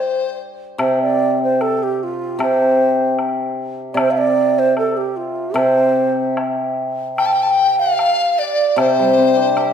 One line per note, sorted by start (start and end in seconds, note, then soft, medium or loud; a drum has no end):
0.00 0.35 C5 medium
0.00 0.39 C5 medium
0.78 2.37 C3 medium
0.78 0.99 C5 medium
0.78 high woodblock medium
1.02 1.39 D5 loud
1.44 1.63 C5 medium
1.61 1.85 A4 loud
1.61 high woodblock soft
1.83 2.05 G4 medium
2.03 2.42 F4 medium
2.39 3.93 C3 medium
2.39 3.16 C5 medium
2.39 high woodblock medium
3.19 high woodblock soft
3.94 5.53 C3 medium
3.94 4.01 D5 medium
3.94 high woodblock medium
3.99 4.12 C5 loud
4.11 4.19 F5 medium
4.18 4.60 D5 loud
4.59 4.78 C5 loud
4.77 4.99 A4 loud
4.77 high woodblock soft
4.97 5.18 G4 medium
5.17 5.59 F4 medium
5.54 7.98 C3 medium
5.54 6.38 C5 loud
5.54 high woodblock medium
6.37 high woodblock soft
6.37 low woodblock soft
7.17 7.81 G5 loud
7.17 7.27 G5 medium
7.17 high woodblock medium
7.26 7.35 A5 medium
7.33 7.44 G5 medium
7.43 7.53 A5 medium
7.51 7.79 G5 medium
7.79 8.39 F5 loud
7.79 8.40 F5 loud
7.99 high woodblock medium
8.39 8.79 D5 medium
8.39 8.82 D5 medium
8.76 9.73 C3 medium
8.76 9.73 C5 medium
8.76 high woodblock medium
8.81 9.73 C5 medium
8.99 9.73 G3 medium
9.18 9.73 C4 medium
9.37 9.73 D4 medium
9.57 9.73 G4 soft
9.57 high woodblock soft